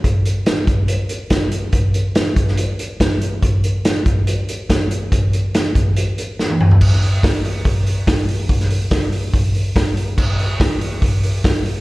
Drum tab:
CC |----------------|----------------|----------------|----------------|
HH |x-x-x-x-x-x-x-x-|x-x-x-x-x-x-x-x-|x-x-x-x-x-x-x-x-|x-x-x-x-x-x-----|
SD |----o-------o---|----o--o----o---|----o-------o---|----o-------o---|
T1 |----------------|----------------|----------------|-------------o--|
T2 |----------------|----------------|----------------|--------------o-|
FT |----------------|----------------|----------------|---------------o|
BD |o-----o-----o---|o-----o-----o---|o-----o-----o---|o-----o---------|

CC |x---------------|----------------|x---------------|
HH |--o-o-o-o-o-o-o-|o-o-o-o-o-o-o-o-|--o-o-o-o-o-o-o-|
SD |-o--o-------o---|-o--o-------o---|----o-------o---|
T1 |----------------|----------------|----------------|
T2 |----------------|----------------|----------------|
FT |----------------|----------------|----------------|
BD |o---o---o---o---|o---o---o---o---|o---o---o---o---|